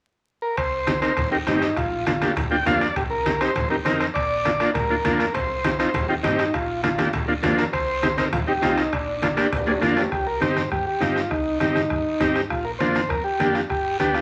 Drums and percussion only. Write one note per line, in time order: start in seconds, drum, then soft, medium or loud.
0.57 bombo low medium
0.57 bombo rim medium
0.57 high timbale medium
0.57 long guiro medium
0.87 bombo rim medium
0.87 high conga medium
0.87 high timbale medium
0.87 short guiro medium
1.02 bombo rim medium
1.02 high timbale medium
1.02 short guiro medium
1.17 bombo low medium
1.17 bombo rim medium
1.17 low conga medium
1.17 high timbale medium
1.17 long guiro medium
1.47 bombo rim medium
1.47 high conga medium
1.47 high timbale medium
1.47 low timbale medium
1.47 short guiro medium
1.62 bombo rim medium
1.62 high timbale medium
1.62 short guiro medium
1.76 bombo low medium
1.76 bombo rim medium
1.76 low conga medium
1.76 high timbale medium
1.76 long guiro medium
2.06 bombo rim medium
2.06 high conga medium
2.06 high timbale medium
2.06 short guiro medium
2.22 bombo rim medium
2.22 high conga medium
2.22 high timbale medium
2.22 short guiro medium
2.36 bombo low medium
2.36 bombo rim medium
2.36 low conga medium
2.36 high timbale medium
2.36 long guiro medium
2.66 bombo low medium
2.66 bombo rim medium
2.66 high conga medium
2.66 high timbale medium
2.66 low timbale medium
2.66 short guiro medium
2.81 bombo rim medium
2.81 high timbale medium
2.81 short guiro medium
2.96 bombo low medium
2.96 bombo rim medium
2.96 low conga medium
2.96 high timbale medium
2.96 long guiro medium
3.26 bombo rim medium
3.26 high conga medium
3.26 high timbale medium
3.26 short guiro medium
3.41 bombo rim medium
3.41 high timbale medium
3.41 short guiro medium
3.56 bombo low medium
3.56 bombo rim medium
3.56 low conga medium
3.56 high timbale medium
3.56 long guiro medium
3.85 bombo rim medium
3.85 high conga medium
3.85 high timbale medium
3.85 short guiro medium
4.00 bombo rim medium
4.00 high timbale medium
4.00 short guiro medium
4.15 bombo low medium
4.15 bombo rim medium
4.15 high timbale medium
4.15 long guiro medium
4.45 bombo rim medium
4.45 high conga medium
4.45 high timbale medium
4.45 short guiro medium
4.60 bombo rim medium
4.60 high timbale medium
4.60 short guiro medium
4.75 bombo low medium
4.75 bombo rim medium
4.75 low conga medium
4.75 high timbale medium
4.75 long guiro medium
5.05 bombo low medium
5.05 bombo rim medium
5.05 high conga medium
5.05 high timbale medium
5.05 short guiro medium
5.20 bombo rim medium
5.20 high timbale medium
5.20 short guiro medium
5.34 bombo low medium
5.34 bombo rim medium
5.34 low conga medium
5.34 high timbale medium
5.34 long guiro medium
5.64 bombo rim medium
5.64 high conga medium
5.64 high timbale medium
5.64 short guiro medium
5.80 bombo rim medium
5.80 high timbale medium
5.80 short guiro medium
5.94 bombo low medium
5.94 bombo rim medium
5.94 low conga medium
5.94 high timbale medium
5.94 long guiro medium
6.24 bombo rim medium
6.24 high conga medium
6.24 low conga medium
6.24 high timbale medium
6.24 low timbale medium
6.24 short guiro medium
6.39 bombo rim medium
6.39 high timbale medium
6.39 short guiro medium
6.54 bombo low medium
6.54 bombo rim medium
6.54 high timbale medium
6.54 long guiro medium
6.84 bombo rim medium
6.84 high conga medium
6.84 high timbale medium
6.84 short guiro medium
6.99 bombo rim medium
6.99 high conga medium
6.99 high timbale medium
6.99 short guiro medium
7.13 bombo low medium
7.13 bombo rim medium
7.13 low conga medium
7.13 high timbale medium
7.13 long guiro medium
7.43 bombo low medium
7.43 bombo rim medium
7.43 high conga medium
7.43 high timbale medium
7.43 low timbale medium
7.43 short guiro medium
7.58 bombo rim medium
7.58 high timbale medium
7.58 short guiro medium
7.73 bombo low medium
7.73 bombo rim medium
7.73 high timbale medium
7.73 long guiro medium
8.03 bombo rim medium
8.03 high conga medium
8.03 high timbale medium
8.03 short guiro medium
8.18 bombo rim medium
8.18 high conga medium
8.18 high timbale medium
8.18 short guiro medium
8.33 bombo low medium
8.33 bombo rim medium
8.33 low conga medium
8.33 high timbale medium
8.33 long guiro medium
8.63 bombo rim medium
8.63 high conga medium
8.63 high timbale medium
8.63 low timbale medium
8.63 short guiro medium
8.78 bombo rim medium
8.78 high timbale medium
8.78 short guiro medium
8.92 bombo low medium
8.92 bombo rim medium
8.92 high timbale medium
8.92 long guiro medium
9.22 bombo rim medium
9.22 high conga medium
9.22 high timbale medium
9.22 short guiro medium
9.37 bombo rim medium
9.37 high timbale medium
9.37 short guiro medium
9.52 bombo low medium
9.52 bombo rim medium
9.52 low conga medium
9.52 high timbale medium
9.52 long guiro medium
9.67 low timbale medium
9.82 bombo rim medium
9.82 high conga medium
9.82 short guiro medium
9.97 bombo rim medium
9.97 low timbale medium
9.97 short guiro medium
10.12 bombo low medium
10.12 bombo rim medium
10.12 long guiro medium
10.42 bombo rim medium
10.42 high conga medium
10.42 short guiro medium
10.57 bombo rim medium
10.57 high conga medium
10.57 short guiro medium
10.72 bombo low medium
10.72 bombo rim medium
10.72 long guiro medium
11.01 bombo rim medium
11.01 high conga medium
11.01 short guiro medium
11.16 bombo rim medium
11.16 short guiro medium
11.31 bombo low medium
11.31 bombo rim medium
11.31 long guiro medium
11.60 bombo rim medium
11.60 high conga medium
11.60 short guiro medium
11.76 bombo rim medium
11.76 high conga medium
11.76 short guiro medium
11.90 bombo low medium
11.90 bombo rim medium
11.90 long guiro medium
12.21 bombo low medium
12.21 bombo rim medium
12.21 high conga medium
12.21 short guiro medium
12.35 bombo rim medium
12.35 short guiro medium
12.50 bombo low medium
12.50 bombo rim medium
12.50 long guiro medium
12.80 bombo rim medium
12.80 high conga medium
12.80 short guiro medium
12.95 bombo rim medium
12.95 high conga medium
12.95 short guiro medium
13.10 bombo low medium
13.10 bombo rim medium
13.10 long guiro medium
13.40 bombo rim medium
13.40 high conga medium
13.40 short guiro medium
13.55 bombo rim medium
13.55 short guiro medium
13.70 bombo low medium
13.70 bombo rim medium
13.70 long guiro medium
13.99 bombo rim medium
13.99 high conga medium
13.99 short guiro medium
14.15 bombo rim medium
14.15 short guiro medium